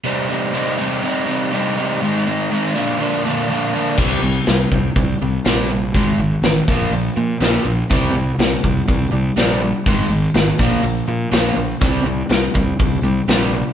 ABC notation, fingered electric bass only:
X:1
M:4/4
L:1/8
Q:1/4=122
K:Cm
V:1 name="Fingered electric bass" clef=bass
z8 | z8 | C,, C,, C,, C,, C,, C,, B,,,2 | A,,, A,,, =A,,, B,,, B,,, B,, B,,, B,,, |
C,, C,, C,, C,, C,, C,, B,,,2 | A,,, A,,, A,,, B,,, B,,, B,, B,,, B,,, | C,, C,, C,, C,, C,, C,, B,,,2 |]